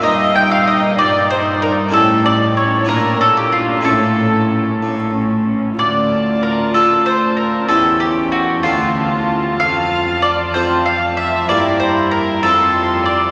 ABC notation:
X:1
M:6/8
L:1/16
Q:3/8=63
K:Dm
V:1 name="Violin section"
_e2 g f e2 d2 c2 B2 | A2 d2 ^c2 B2 A G F2 | A6 z6 | a12 |
g6 a6- | a12 | b6 c'6 |]
V:2 name="Mandolin"
_e2 g f e2 d2 c2 B2 | A2 d2 ^c2 B2 A G F2 | A6 z6 | d4 B2 A2 c2 B2 |
A2 G2 ^F2 =F6 | f4 d2 c2 f2 e2 | d2 c2 B2 A4 d2 |]
V:3 name="Violin section"
_e2 g f e2 d2 c2 B2 | A2 d2 ^c2 B2 A G F2 | A6 z6 | d4 B2 A2 c2 B2 |
A2 G2 ^F2 =F6 | f4 d2 c2 f2 e2 | d2 c2 B2 A4 d2 |]
V:4 name="Harpsichord"
[B,_EB]12 | [^CEG]6 [DF]6 | [^CEA]12 | z6 [DFA]6 |
[^CEG]6 [DFA]6 | z6 [CFA]6 | [B,EG]6 [CFA]6 |]
V:5 name="Harpsichord" clef=bass
G,,6 G,,6 | A,,6 B,,6 | A,,6 A,,6 | D,,12 |
E,,6 D,,6 | F,,12 | G,,6 F,,6 |]
V:6 name="Viola section"
_E2 E2 E2 E2 E2 E2 | ^C2 C2 C2 D2 D2 D2 | ^C2 C2 C2 C2 C2 C2 | F12 |
^C6 F6- | F12 | E6 F6 |]
V:7 name="Cello section" clef=bass
G,,6 G,,6 | A,,6 B,,6 | A,,6 A,,6 | D,,12 |
E,,6 D,,6 | F,,12 | G,,6 F,,6 |]